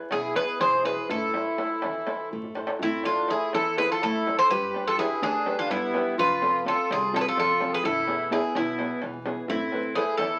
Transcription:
Already playing: E4 G#4 B4
0.11 B1 B2 E4 G#4, darbuka tek
0.35 E4 G#4 B4, darbuka tek
0.60 E1 E3 G#4 C5, darbuka tek
0.85 E4 G#4 B4, darbuka tek
1.09 A1 A3 E4 A4, darbuka dum
1.33 E4 A4 C5, darbuka tek
1.46 darbuka tek
1.58 E4 A4 C5, darbuka tek
1.70 darbuka tek
1.82 E2 E3, darbuka tek
1.95 darbuka tek
2.07 E4 A4 C5, darbuka tek
2.20 darbuka tek
2.31 A1 A3, darbuka dum
2.44 darbuka dum
2.55 E4 A4 C5, darbuka tek
2.67 darbuka tek
2.79 A1 A3 C4 E4, darbuka dum
3.04 D4 E4 F4 A4 C5, darbuka tek
3.28 E4 G#4 A4 C5, darbuka tek
3.53 E2 E3 E4 A4, darbuka tek
3.77 E4 G#4 A4 B4 C5, darbuka tek
3.88 F4 A4
4.01 A1 A3 E4 A4, darbuka tek, darbuka dum
4.27 E4 A4 C5, darbuka tek
4.36 A4 C5
4.50 G1 G3 G4 B4, darbuka dum
4.74 D4 G4 B4, darbuka tek
4.85 F4 A4
4.98 D4 E4 G4 G#4 B4, darbuka tek
5.22 D2 D3 D4 G#4, darbuka tek
5.46 D4 G4 B4, darbuka tek
5.57 D4 F4
5.70 G1 G3 B3 E4, darbuka tek, darbuka dum
5.83 darbuka tek
5.94 D4 G4 B4, darbuka tek
6.18 F1 F3 F4 B4, darbuka dum
6.41 C4 F4 A4, darbuka tek
6.65 C4 F4 A4, darbuka tek
6.90 C2 C3 F4 G#4, darbuka tek
7.13 C4 F4 A4, darbuka tek
7.21 G#4 B4
7.28 F4 A4
7.37 F1 F3 F4 A4, darbuka tek, darbuka dum
7.50 darbuka tek
7.61 C4 F4 A4, darbuka tek
7.72 G#4 B4
7.84 E1 E3 E4 A4, darbuka dum
8.07 B3 E4 G#4, darbuka tek
8.30 B3 E4 G#4, darbuka tek
8.44 darbuka tek
8.55 B1 B2 B3 E4, darbuka tek
8.66 darbuka tek
8.79 B3 E4 G#4, darbuka tek
9.02 E1 E3, darbuka tek
9.13 darbuka tek
9.25 B3 E4 G#4, darbuka tek
9.37 darbuka tek
9.48 A1 A3 C4 E4, darbuka dum
9.72 A4 B4 C5, darbuka tek
9.95 E4 G#4 A4 B4 C5, darbuka tek
10.17 E2 E3 E4 A4, darbuka tek

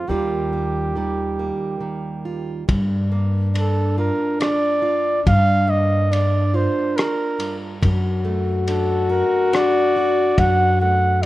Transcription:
0.07 D#2 D#3 G3 A#3 F4 G4
0.53 A#3
0.96 D#3 G3
1.39 A#3
1.80 D#3
2.25 F4
2.68 G2 D4, kick, ride
3.12 A#3
3.54 D4, ride
3.58 A4
3.98 F4 A#4
4.40 D4 D5, cross-stick, ride
4.82 F4
5.26 G2 F5, kick, ride
5.67 A#3 D#5
6.12 D4 D5, ride
6.54 F4 C5
6.97 A#4, cross-stick, ride
7.39 G2, ride
7.82 F#2 F#4, kick, ride
8.25 A3
8.68 D4 A4, ride
9.09 F#4 A#4
9.53 D4 D5, cross-stick, ride
9.96 F#4
10.38 F#2 F#5, kick, ride
10.80 A3 F#5
11.22 D5

